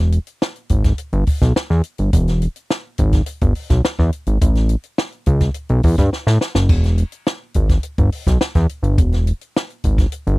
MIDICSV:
0, 0, Header, 1, 3, 480
1, 0, Start_track
1, 0, Tempo, 570885
1, 1796, Time_signature, 4, 2, 24, 8
1, 8734, End_track
2, 0, Start_track
2, 0, Title_t, "Analog synth bass"
2, 0, Program_c, 0, 38
2, 0, Note_on_c, 0, 28, 103
2, 159, Note_off_c, 0, 28, 0
2, 589, Note_on_c, 0, 32, 95
2, 783, Note_off_c, 0, 32, 0
2, 948, Note_on_c, 0, 31, 109
2, 1046, Note_off_c, 0, 31, 0
2, 1190, Note_on_c, 0, 35, 91
2, 1288, Note_off_c, 0, 35, 0
2, 1432, Note_on_c, 0, 40, 107
2, 1529, Note_off_c, 0, 40, 0
2, 1674, Note_on_c, 0, 31, 79
2, 1770, Note_off_c, 0, 31, 0
2, 1793, Note_on_c, 0, 28, 92
2, 2082, Note_off_c, 0, 28, 0
2, 2515, Note_on_c, 0, 32, 99
2, 2707, Note_off_c, 0, 32, 0
2, 2875, Note_on_c, 0, 31, 93
2, 2971, Note_off_c, 0, 31, 0
2, 3111, Note_on_c, 0, 35, 94
2, 3209, Note_off_c, 0, 35, 0
2, 3356, Note_on_c, 0, 40, 108
2, 3452, Note_off_c, 0, 40, 0
2, 3589, Note_on_c, 0, 32, 82
2, 3688, Note_off_c, 0, 32, 0
2, 3713, Note_on_c, 0, 33, 96
2, 4002, Note_off_c, 0, 33, 0
2, 4430, Note_on_c, 0, 37, 92
2, 4625, Note_off_c, 0, 37, 0
2, 4790, Note_on_c, 0, 35, 97
2, 4889, Note_off_c, 0, 35, 0
2, 4912, Note_on_c, 0, 40, 93
2, 5010, Note_off_c, 0, 40, 0
2, 5032, Note_on_c, 0, 43, 88
2, 5130, Note_off_c, 0, 43, 0
2, 5270, Note_on_c, 0, 45, 99
2, 5369, Note_off_c, 0, 45, 0
2, 5506, Note_on_c, 0, 30, 81
2, 5629, Note_on_c, 0, 28, 104
2, 5641, Note_off_c, 0, 30, 0
2, 5919, Note_off_c, 0, 28, 0
2, 6353, Note_on_c, 0, 32, 94
2, 6546, Note_off_c, 0, 32, 0
2, 6712, Note_on_c, 0, 31, 96
2, 6810, Note_off_c, 0, 31, 0
2, 6952, Note_on_c, 0, 35, 91
2, 7050, Note_off_c, 0, 35, 0
2, 7190, Note_on_c, 0, 40, 99
2, 7288, Note_off_c, 0, 40, 0
2, 7420, Note_on_c, 0, 31, 86
2, 7553, Note_on_c, 0, 28, 90
2, 7566, Note_off_c, 0, 31, 0
2, 7841, Note_off_c, 0, 28, 0
2, 8276, Note_on_c, 0, 32, 84
2, 8467, Note_off_c, 0, 32, 0
2, 8634, Note_on_c, 0, 31, 99
2, 8730, Note_off_c, 0, 31, 0
2, 8734, End_track
3, 0, Start_track
3, 0, Title_t, "Drums"
3, 103, Note_on_c, 9, 42, 73
3, 187, Note_off_c, 9, 42, 0
3, 225, Note_on_c, 9, 42, 50
3, 309, Note_off_c, 9, 42, 0
3, 353, Note_on_c, 9, 38, 119
3, 437, Note_off_c, 9, 38, 0
3, 468, Note_on_c, 9, 42, 38
3, 552, Note_off_c, 9, 42, 0
3, 584, Note_on_c, 9, 42, 69
3, 590, Note_on_c, 9, 36, 84
3, 668, Note_off_c, 9, 42, 0
3, 674, Note_off_c, 9, 36, 0
3, 707, Note_on_c, 9, 42, 51
3, 710, Note_on_c, 9, 36, 98
3, 710, Note_on_c, 9, 38, 34
3, 791, Note_off_c, 9, 42, 0
3, 794, Note_off_c, 9, 36, 0
3, 794, Note_off_c, 9, 38, 0
3, 824, Note_on_c, 9, 42, 76
3, 908, Note_off_c, 9, 42, 0
3, 947, Note_on_c, 9, 42, 32
3, 1031, Note_off_c, 9, 42, 0
3, 1065, Note_on_c, 9, 46, 79
3, 1072, Note_on_c, 9, 36, 86
3, 1149, Note_off_c, 9, 46, 0
3, 1156, Note_off_c, 9, 36, 0
3, 1191, Note_on_c, 9, 36, 86
3, 1193, Note_on_c, 9, 38, 37
3, 1197, Note_on_c, 9, 42, 49
3, 1276, Note_off_c, 9, 36, 0
3, 1277, Note_off_c, 9, 38, 0
3, 1281, Note_off_c, 9, 42, 0
3, 1314, Note_on_c, 9, 38, 102
3, 1398, Note_off_c, 9, 38, 0
3, 1433, Note_on_c, 9, 38, 31
3, 1517, Note_off_c, 9, 38, 0
3, 1543, Note_on_c, 9, 42, 62
3, 1627, Note_off_c, 9, 42, 0
3, 1665, Note_on_c, 9, 42, 50
3, 1749, Note_off_c, 9, 42, 0
3, 1790, Note_on_c, 9, 42, 105
3, 1792, Note_on_c, 9, 36, 106
3, 1874, Note_off_c, 9, 42, 0
3, 1876, Note_off_c, 9, 36, 0
3, 1914, Note_on_c, 9, 42, 37
3, 1921, Note_on_c, 9, 38, 39
3, 1998, Note_off_c, 9, 42, 0
3, 2005, Note_off_c, 9, 38, 0
3, 2032, Note_on_c, 9, 42, 76
3, 2116, Note_off_c, 9, 42, 0
3, 2151, Note_on_c, 9, 42, 48
3, 2235, Note_off_c, 9, 42, 0
3, 2274, Note_on_c, 9, 38, 101
3, 2358, Note_off_c, 9, 38, 0
3, 2505, Note_on_c, 9, 42, 73
3, 2513, Note_on_c, 9, 36, 84
3, 2589, Note_off_c, 9, 42, 0
3, 2597, Note_off_c, 9, 36, 0
3, 2628, Note_on_c, 9, 42, 52
3, 2630, Note_on_c, 9, 38, 32
3, 2632, Note_on_c, 9, 36, 91
3, 2712, Note_off_c, 9, 42, 0
3, 2714, Note_off_c, 9, 38, 0
3, 2716, Note_off_c, 9, 36, 0
3, 2742, Note_on_c, 9, 42, 87
3, 2826, Note_off_c, 9, 42, 0
3, 2869, Note_on_c, 9, 42, 34
3, 2873, Note_on_c, 9, 36, 97
3, 2954, Note_off_c, 9, 42, 0
3, 2957, Note_off_c, 9, 36, 0
3, 2986, Note_on_c, 9, 46, 70
3, 3070, Note_off_c, 9, 46, 0
3, 3109, Note_on_c, 9, 38, 37
3, 3112, Note_on_c, 9, 36, 78
3, 3113, Note_on_c, 9, 42, 52
3, 3193, Note_off_c, 9, 38, 0
3, 3197, Note_off_c, 9, 36, 0
3, 3197, Note_off_c, 9, 42, 0
3, 3234, Note_on_c, 9, 38, 109
3, 3318, Note_off_c, 9, 38, 0
3, 3353, Note_on_c, 9, 36, 79
3, 3354, Note_on_c, 9, 38, 34
3, 3437, Note_off_c, 9, 36, 0
3, 3438, Note_off_c, 9, 38, 0
3, 3469, Note_on_c, 9, 42, 61
3, 3553, Note_off_c, 9, 42, 0
3, 3586, Note_on_c, 9, 42, 53
3, 3670, Note_off_c, 9, 42, 0
3, 3712, Note_on_c, 9, 36, 105
3, 3713, Note_on_c, 9, 42, 103
3, 3797, Note_off_c, 9, 36, 0
3, 3797, Note_off_c, 9, 42, 0
3, 3828, Note_on_c, 9, 42, 36
3, 3835, Note_on_c, 9, 38, 40
3, 3912, Note_off_c, 9, 42, 0
3, 3919, Note_off_c, 9, 38, 0
3, 3943, Note_on_c, 9, 42, 68
3, 4027, Note_off_c, 9, 42, 0
3, 4065, Note_on_c, 9, 42, 45
3, 4150, Note_off_c, 9, 42, 0
3, 4189, Note_on_c, 9, 38, 116
3, 4273, Note_off_c, 9, 38, 0
3, 4307, Note_on_c, 9, 42, 33
3, 4391, Note_off_c, 9, 42, 0
3, 4423, Note_on_c, 9, 42, 65
3, 4429, Note_on_c, 9, 36, 85
3, 4507, Note_off_c, 9, 42, 0
3, 4513, Note_off_c, 9, 36, 0
3, 4544, Note_on_c, 9, 42, 48
3, 4547, Note_on_c, 9, 38, 35
3, 4549, Note_on_c, 9, 36, 96
3, 4628, Note_off_c, 9, 42, 0
3, 4631, Note_off_c, 9, 38, 0
3, 4633, Note_off_c, 9, 36, 0
3, 4660, Note_on_c, 9, 42, 80
3, 4744, Note_off_c, 9, 42, 0
3, 4785, Note_on_c, 9, 42, 30
3, 4869, Note_off_c, 9, 42, 0
3, 4904, Note_on_c, 9, 46, 80
3, 4909, Note_on_c, 9, 36, 86
3, 4988, Note_off_c, 9, 46, 0
3, 4993, Note_off_c, 9, 36, 0
3, 5028, Note_on_c, 9, 38, 33
3, 5029, Note_on_c, 9, 36, 85
3, 5032, Note_on_c, 9, 42, 46
3, 5112, Note_off_c, 9, 38, 0
3, 5113, Note_off_c, 9, 36, 0
3, 5116, Note_off_c, 9, 42, 0
3, 5153, Note_on_c, 9, 38, 56
3, 5237, Note_off_c, 9, 38, 0
3, 5271, Note_on_c, 9, 38, 64
3, 5355, Note_off_c, 9, 38, 0
3, 5390, Note_on_c, 9, 38, 82
3, 5475, Note_off_c, 9, 38, 0
3, 5508, Note_on_c, 9, 38, 93
3, 5592, Note_off_c, 9, 38, 0
3, 5625, Note_on_c, 9, 55, 75
3, 5628, Note_on_c, 9, 36, 104
3, 5709, Note_off_c, 9, 55, 0
3, 5712, Note_off_c, 9, 36, 0
3, 5748, Note_on_c, 9, 42, 34
3, 5755, Note_on_c, 9, 38, 36
3, 5832, Note_off_c, 9, 42, 0
3, 5839, Note_off_c, 9, 38, 0
3, 5867, Note_on_c, 9, 42, 73
3, 5951, Note_off_c, 9, 42, 0
3, 5986, Note_on_c, 9, 42, 52
3, 6070, Note_off_c, 9, 42, 0
3, 6110, Note_on_c, 9, 38, 115
3, 6194, Note_off_c, 9, 38, 0
3, 6342, Note_on_c, 9, 42, 68
3, 6349, Note_on_c, 9, 36, 86
3, 6426, Note_off_c, 9, 42, 0
3, 6434, Note_off_c, 9, 36, 0
3, 6470, Note_on_c, 9, 36, 93
3, 6470, Note_on_c, 9, 42, 44
3, 6472, Note_on_c, 9, 38, 36
3, 6554, Note_off_c, 9, 36, 0
3, 6554, Note_off_c, 9, 42, 0
3, 6557, Note_off_c, 9, 38, 0
3, 6583, Note_on_c, 9, 42, 75
3, 6667, Note_off_c, 9, 42, 0
3, 6709, Note_on_c, 9, 42, 34
3, 6712, Note_on_c, 9, 36, 93
3, 6793, Note_off_c, 9, 42, 0
3, 6796, Note_off_c, 9, 36, 0
3, 6829, Note_on_c, 9, 46, 77
3, 6913, Note_off_c, 9, 46, 0
3, 6951, Note_on_c, 9, 36, 85
3, 6953, Note_on_c, 9, 38, 36
3, 6957, Note_on_c, 9, 42, 50
3, 7035, Note_off_c, 9, 36, 0
3, 7037, Note_off_c, 9, 38, 0
3, 7042, Note_off_c, 9, 42, 0
3, 7070, Note_on_c, 9, 38, 105
3, 7154, Note_off_c, 9, 38, 0
3, 7189, Note_on_c, 9, 42, 39
3, 7191, Note_on_c, 9, 36, 88
3, 7196, Note_on_c, 9, 38, 34
3, 7273, Note_off_c, 9, 42, 0
3, 7275, Note_off_c, 9, 36, 0
3, 7280, Note_off_c, 9, 38, 0
3, 7310, Note_on_c, 9, 42, 68
3, 7394, Note_off_c, 9, 42, 0
3, 7431, Note_on_c, 9, 42, 53
3, 7515, Note_off_c, 9, 42, 0
3, 7552, Note_on_c, 9, 36, 111
3, 7552, Note_on_c, 9, 42, 91
3, 7636, Note_off_c, 9, 36, 0
3, 7636, Note_off_c, 9, 42, 0
3, 7672, Note_on_c, 9, 42, 33
3, 7679, Note_on_c, 9, 38, 36
3, 7756, Note_off_c, 9, 42, 0
3, 7763, Note_off_c, 9, 38, 0
3, 7794, Note_on_c, 9, 42, 76
3, 7878, Note_off_c, 9, 42, 0
3, 7914, Note_on_c, 9, 42, 44
3, 7998, Note_off_c, 9, 42, 0
3, 8042, Note_on_c, 9, 38, 115
3, 8126, Note_off_c, 9, 38, 0
3, 8156, Note_on_c, 9, 42, 36
3, 8241, Note_off_c, 9, 42, 0
3, 8271, Note_on_c, 9, 42, 71
3, 8274, Note_on_c, 9, 36, 81
3, 8355, Note_off_c, 9, 42, 0
3, 8358, Note_off_c, 9, 36, 0
3, 8393, Note_on_c, 9, 36, 100
3, 8395, Note_on_c, 9, 42, 47
3, 8397, Note_on_c, 9, 38, 34
3, 8477, Note_off_c, 9, 36, 0
3, 8479, Note_off_c, 9, 42, 0
3, 8481, Note_off_c, 9, 38, 0
3, 8508, Note_on_c, 9, 42, 85
3, 8592, Note_off_c, 9, 42, 0
3, 8635, Note_on_c, 9, 42, 34
3, 8720, Note_off_c, 9, 42, 0
3, 8734, End_track
0, 0, End_of_file